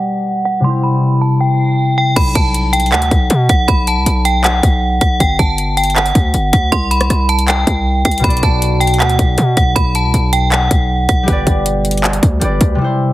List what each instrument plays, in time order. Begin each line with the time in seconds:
Already playing: harp G3 G4 B4 D5, synth bell F#5
0.45 synth bell F#5
0.60 harp C3 G3
0.64 harp E4, synth bell C6
0.69 harp C5
0.83 synth bell B5
1.21 synth bell A5
1.41 synth bell G5
1.98 synth bell G5
2.16 808-style bass B1, synth bell B5, kick, closed hi-hat, crash
2.35 808-style bass B1, synth bell A5, kick, closed hi-hat
2.54 closed hi-hat
2.73 synth bell G5, closed hi-hat
2.80 closed hi-hat
2.86 closed hi-hat
2.92 808-style bass D2, synth bell F#5, clap, closed hi-hat
3.02 closed hi-hat
3.11 808-style bass B1, kick, closed hi-hat
3.30 808-style bass B2, closed hi-hat
3.49 808-style bass B1, synth bell F#5, kick, closed hi-hat
3.68 808-style bass B1, synth bell B5, kick, closed hi-hat
3.87 synth bell A5, closed hi-hat
3.97 808-style bass C2
4.06 808-style bass B1, closed hi-hat
4.25 synth bell G5, closed hi-hat
4.44 synth bell F#5, clap, closed hi-hat
4.63 808-style bass B1, kick, closed hi-hat
5.01 808-style bass B1, synth bell F#5, kick, closed hi-hat
5.20 808-style bass G1, synth bell G5, kick, closed hi-hat
5.39 808-style bass G1, synth bell A5, kick, closed hi-hat
5.58 closed hi-hat
5.77 synth bell G5, closed hi-hat
5.84 closed hi-hat
5.90 closed hi-hat
5.96 synth bell F#5, clap, closed hi-hat
6.06 closed hi-hat
6.15 808-style bass D2, kick, closed hi-hat
6.34 808-style bass G1, closed hi-hat
6.53 808-style bass D2, synth bell F#5, kick, closed hi-hat
6.72 808-style bass C2, synth bell C6, kick, closed hi-hat
6.91 synth bell B5, closed hi-hat
7.01 cross-stick, closed hi-hat
7.10 808-style bass C2, cross-stick, closed hi-hat
7.29 synth bell A5, closed hi-hat, open hi-hat
7.39 closed hi-hat
7.48 synth bell G5, clap, closed hi-hat
7.67 808-style bass C2, kick, closed hi-hat
8.05 808-style bass C2, synth bell G5, kick, closed hi-hat, open hi-hat
8.11 closed hi-hat
8.18 harp B2, closed hi-hat
8.23 808-style bass B1, harp B3 F#4, synth bell B5, kick, closed hi-hat
8.29 harp D5, closed hi-hat
8.37 closed hi-hat
8.43 808-style bass B1, synth bell A5, kick, closed hi-hat
8.62 closed hi-hat
8.80 synth bell G5, closed hi-hat
8.87 closed hi-hat
8.94 closed hi-hat
9.00 808-style bass D2, synth bell F#5, clap, closed hi-hat
9.10 closed hi-hat
9.19 808-style bass B1, kick, closed hi-hat
9.38 808-style bass B2, closed hi-hat
9.57 808-style bass B1, synth bell F#5, kick, closed hi-hat
9.76 808-style bass B1, synth bell B5, kick, closed hi-hat
9.95 synth bell A5, closed hi-hat
10.04 808-style bass C2
10.14 808-style bass B1, closed hi-hat
10.33 synth bell G5, closed hi-hat
10.52 synth bell F#5, clap, closed hi-hat
10.71 808-style bass B1, kick, closed hi-hat
11.09 808-style bass B1, synth bell F#5, kick, closed hi-hat
11.23 harp G3 G4
11.28 808-style bass G1, harp B4, kick, closed hi-hat
11.32 harp D5
11.47 808-style bass G1, kick, closed hi-hat
11.66 closed hi-hat
11.85 closed hi-hat
11.91 closed hi-hat
11.97 closed hi-hat
12.04 clap, closed hi-hat
12.13 closed hi-hat
12.23 808-style bass D2, kick, closed hi-hat
12.40 808-style bass G1, harp G3 G4 B4, closed hi-hat
12.44 harp D5
12.61 808-style bass D2, kick, closed hi-hat
12.75 harp C3 G3
12.81 harp E4 C5